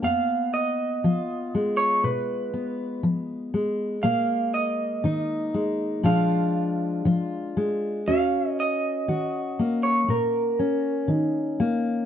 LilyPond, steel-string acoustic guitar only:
\new Staff \with { instrumentName = "Steel-string acoustic guitar" } { \clef bass \time 4/4 \key ees \minor \tempo 4 = 60 << { ces'4 f'8 aes4 ces'4 aes8 | bes4 ees'8 aes8 <f aes d' f'>4 f'8 aes8 | des'4 ges'8 bes4 des'4 bes8 | } \\ { f,4 f4 ces4 f4 | bes,4 ees4 bes,4 f4 | ees,4 ees4 bes,4 ees4 | } >> }